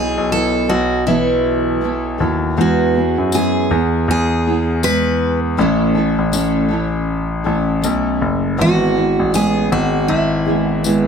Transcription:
Already playing: B1 F#3 B3 E4 G#4
0.17 B1
0.31 F#3 B3 E4 A4
0.68 B1 F#3 B3 E4 F#4 A4
1.06 B2 E3 F#3 B3 E4 A4
1.81 F#3 B3 E4 A4
2.18 D#2 F#3 B3 E4 A4
2.57 E2 E3 G#3 B3 E4 F#4 G#4
2.94 B3 E4 G#4
3.18 F#2
3.32 G#3 B3 E4 G#4, tambourine
3.69 E2 B3 E4 G#4
4.08 E2 G#4
4.46 B3 E4 G#4
4.83 G#3 B3 E4 G#4 B4, tambourine
5.57 A1 A2 E3 A3 C#4 E4 A4
5.95 A3 C#4 E4 A4
6.19 A1
6.32 A3 C#4 E4 A4, tambourine
6.68 A3 C#4 E4 A4
7.44 A1 A3 C#4 E4 A4
7.82 B1 A3 C#4 E4 A4, tambourine
8.21 F#1
8.57 G#1 G#2 E3 G#3 B3 E4 G#4
8.61 F#4
8.95 G#3 B3 E4 G#4
9.19 A1
9.32 G#3 B3 E4 G#4, tambourine
9.70 G#1 G#3 B3 E4 F#4 G#4
10.08 G#1 E4
10.45 G#3 B3 E4 G#4
10.83 G#3 B3 E4 G#4, tambourine

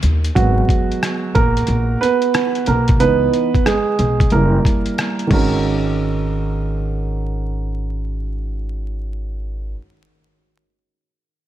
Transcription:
0.03 D#2, closed hi-hat, low conga, shaker
0.24 closed hi-hat, shaker
0.35 G#1 F#3 G#3 B3 F#4, kick, closed hi-hat
0.69 kick, closed hi-hat
0.92 closed hi-hat
1.03 cross-stick, closed hi-hat
1.35 A#1 A#3 A#4, kick, closed hi-hat
1.57 closed hi-hat
1.67 A#1, closed hi-hat
2.01 B3 B4, closed hi-hat
2.22 closed hi-hat
2.34 cross-stick, closed hi-hat
2.55 closed hi-hat
2.66 B1 A#3 A#4, closed hi-hat
2.88 kick, closed hi-hat
2.99 C#2 E3 B3 D#4 B4, closed hi-hat
3.33 closed hi-hat
3.54 kick, closed hi-hat
3.66 G#3 G#4, cross-stick, closed hi-hat
3.99 B1, closed hi-hat
4.20 kick, closed hi-hat
4.30 F#1 G3 A#3 E4 A#4, closed hi-hat
4.65 kick, cross-stick, closed hi-hat
4.86 closed hi-hat
4.98 cross-stick, closed hi-hat
5.19 closed hi-hat
5.27 G#1 D#3 G#3 C#4, kick, crash
5.32 F#4 A#4

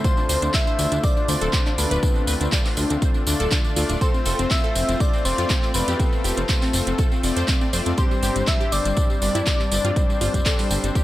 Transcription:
0.04 A3 D4 F4 C5 C6, kick, closed hi-hat, tambourine
0.17 D4, tambourine
0.29 D2 C5, open hi-hat, tambourine
0.42 D2 D4, closed hi-hat, tambourine
0.54 D4 E5 E6, kick, clap, closed hi-hat, tambourine
0.67 C5, tambourine
0.79 D2 D4, open hi-hat, tambourine
0.92 D2 D4, closed hi-hat, tambourine
1.03 D5 D6, kick, closed hi-hat, tambourine
1.17 D4, tambourine
1.28 D2 D3 A3 D4 F4 C5 D5 C6, open hi-hat, tambourine
1.41 D1 A4, closed hi-hat, tambourine
1.53 D4, kick, clap, closed hi-hat, tambourine
1.66 D4, clap, tambourine
1.78 D2 D3 A3 D4 F4 B4 D5 B5, open hi-hat, tambourine
1.91 D1 B4, closed hi-hat, tambourine
2.03 D3 C4 D4, kick, closed hi-hat, tambourine
2.16 D4, tambourine
2.27 D2 B4, open hi-hat, tambourine
2.40 D2 D4, closed hi-hat, tambourine
2.52 D5, kick, clap, closed hi-hat, tambourine
2.65 D4, clap, open hi-hat, tambourine
2.77 D2 D4, open hi-hat, tambourine
2.90 D2 D4, closed hi-hat, tambourine
3.02 C5, kick, closed hi-hat, tambourine
3.14 D4, tambourine
3.27 D2 D3 A3 D4 F4 D5, open hi-hat, tambourine
3.40 D1 A4, closed hi-hat, tambourine
3.51 D4, kick, clap, closed hi-hat, tambourine
3.64 D4, tambourine
3.76 D2 A3 D4 F4 D5, open hi-hat, tambourine
3.89 D1 D4, closed hi-hat, tambourine
4.01 A3 C4 F4 A4 C5 C6, kick, closed hi-hat, tambourine
4.14 C4, tambourine
4.25 F1 A4, open hi-hat, tambourine
4.39 F1 C4, closed hi-hat, tambourine
4.51 C4 E5 E6, kick, clap, closed hi-hat, tambourine
4.64 A4, tambourine
4.75 F1 C4, open hi-hat, tambourine
4.89 F1 C4, closed hi-hat, tambourine
5.00 D5 D6, kick, closed hi-hat, tambourine
5.13 C4, tambourine
5.25 F1 A3 C4 F4 C5 D5 C6, open hi-hat, tambourine
5.38 F2 F4, closed hi-hat, tambourine
5.49 C4, kick, clap, closed hi-hat, tambourine
5.63 C4, clap, tambourine
5.74 F1 A3 C4 F4 B4 D5 B5, open hi-hat, tambourine
5.88 F2 G4, closed hi-hat, tambourine
5.99 A3 C4 F4 A4, kick, closed hi-hat, tambourine
6.13 C4, tambourine
6.24 F1 G4, open hi-hat, tambourine
6.37 F1 C4, closed hi-hat, tambourine
6.49 C5, kick, clap, closed hi-hat, tambourine
6.62 C4, clap, open hi-hat, tambourine
6.73 F1 C4, open hi-hat, tambourine
6.87 F1 C4, closed hi-hat, tambourine
6.98 A4, kick, closed hi-hat, tambourine
7.12 C4, tambourine
7.23 F1 A3 C4 F4 D5, open hi-hat, tambourine
7.37 F2 C5, closed hi-hat, tambourine
7.48 C4, kick, clap, closed hi-hat, tambourine
7.61 C4, tambourine
7.73 F1 A3 C4 F4 C5 D5, open hi-hat, tambourine
7.86 F2 C4, closed hi-hat, tambourine
7.98 G2 G3 C4 D4 G4 C5 C6, kick, closed hi-hat, tambourine
8.11 G3, tambourine
8.23 G1 G4, open hi-hat, tambourine
8.36 G1 G3, closed hi-hat, tambourine
8.47 G3 E5 E6, kick, clap, closed hi-hat, tambourine
8.61 G4, tambourine
8.72 G1 G3 D5 D6, open hi-hat, tambourine
8.85 G1 G3, closed hi-hat, tambourine
8.96 kick, closed hi-hat, tambourine
9.10 G3, tambourine
9.22 G1 G2 G3 C4 D4 D5, open hi-hat, tambourine
9.35 G2 E4, closed hi-hat, tambourine
9.46 G3, kick, clap, closed hi-hat, tambourine
9.60 G3, clap, tambourine
9.71 G1 G2 G3 C4 D4 D5, open hi-hat, tambourine
9.85 G2 F4, closed hi-hat
9.96 G2 G3 C4 D4 C5, kick, closed hi-hat, tambourine
10.09 G3, tambourine
10.21 G1 F4, open hi-hat, tambourine
10.34 G1 G3, kick, closed hi-hat, tambourine
10.46 A4, kick, clap, closed hi-hat, tambourine
10.59 G3, clap, open hi-hat, tambourine
10.71 G1 G3, open hi-hat, tambourine
10.84 G1 G3, closed hi-hat, tambourine
10.95 G4, kick, closed hi-hat, tambourine

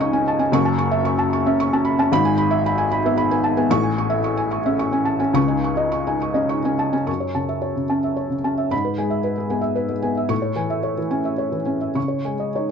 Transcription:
Already playing: C#2 C#3 C#4 D#5 G#5
0.00 D#4 C#6
0.13 C#4 G#5
0.28 A5
0.39 C#4 G#5
0.52 F#1 F#2 C#6
0.65 A5
0.78 C#6
0.91 E5
1.05 C#6
1.19 A5
1.33 C#6
1.46 C#4 E5
1.60 C#6
1.73 C#4 A5
1.85 B5
1.99 C#4 A5
2.12 G#1 G#2 B5
2.25 G#5
2.38 B5
2.51 E5
2.66 B5
2.78 G#5
2.92 B5
3.06 B3 E5
3.17 B5
3.31 B3 G#5
3.44 A5
3.57 B3 G#5
3.70 A1 A2 C#6
3.83 G#5
3.98 C#6
4.10 E5
4.24 C#6
4.37 G#5
4.51 C#6
4.66 C#4 E5
4.79 C#6
4.92 C#4 G#5
5.05 A5
5.20 C#4 G#5
5.33 C#2 C#3 C#6
5.48 D#4 G#5
5.64 C#6
5.77 D#5
5.92 C#6
6.07 D#4 G#5
6.22 C#6
6.34 C#4 D#5
6.49 D#4 C#6
6.65 C#4 G#5
6.79 A5
6.93 C#4 G#5
7.06 F#2 C#6
7.20 C#5
7.35 C#3 A5
7.49 E5
7.62 C#5
7.76 C#3
7.90 C#4 A5
8.04 E5
8.16 C#5
8.30 C#3
8.44 C#4 A5
8.58 E5
8.71 G#2 B5
8.85 B4
8.98 G#3 G#5
9.10 E5
9.24 B4
9.38 G#3
9.50 B3 G#5
9.61 E5
9.75 B4
9.89 G#3
10.02 B3 G#5
10.17 E5
10.29 A2 C#6
10.42 C#5
10.56 E3 G#5
10.70 E5
10.83 C#5
10.98 E3
11.11 C#4 G#5
11.25 E5
11.38 C#5
11.52 E3
11.65 C#4 G#5
11.81 E5
11.95 C#3 C#6
12.08 C#5
12.25 G#3 G#5
12.40 D#5
12.55 D#4 C#5

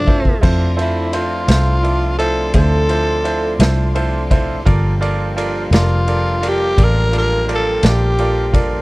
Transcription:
Already playing: C3 A3 C4 D4 E4 F4
0.07 E4 F4 A4 C5, kick
0.25 kick
0.41 F2 F3 A3 C4 D4 E4 F4 A4 C5 D5 C6, kick, crash
0.77 E4 F4 A4 C5, ride
0.81 E4
1.12 E4 F4 A4 C5, ride
1.48 C2 E4 F4 A4 C5, snare, ride
1.83 E4 F4 A4 D5, ride
2.19 E4 F4 A4 C5, ride
2.54 D2 E4 F4 A4 C5, kick, ride
2.89 E4 F4 A4 C5, ride
3.24 E4 F4 A4 C5, ride
3.59 C2 E4 F4 A4 C5, snare, ride
3.95 E4 F4 A4 C5, ride
4.31 E4 F4 A4 C5, kick, ride
4.65 G1 F3 G3 A#3 D4 F4 G4 A4 A#4 D5 F5 G5, kick, ride
5.01 F4 A4 A#4 D5, ride
5.36 F4 A4 A#4 D5, ride
5.71 F1 F4 A4 A#4 D5, snare, ride
5.76 F4
6.07 F4 A4 A#4 D5, ride
6.41 F4 A4 A#4 D5, ride
6.49 G4
6.78 A1 F4 A4 A#4 D5, kick, ride
6.84 A#4
7.12 F4 A4 A#4 D5, ride
7.18 A#4
7.48 F4 A4 A#4 D5, ride
7.55 A4
7.83 A#1 F4 A4 A#4 D5, snare, ride
7.89 G4
8.18 F4 A4 A#4 D5, ride
8.53 F4 A4 A#4 D5, kick, ride

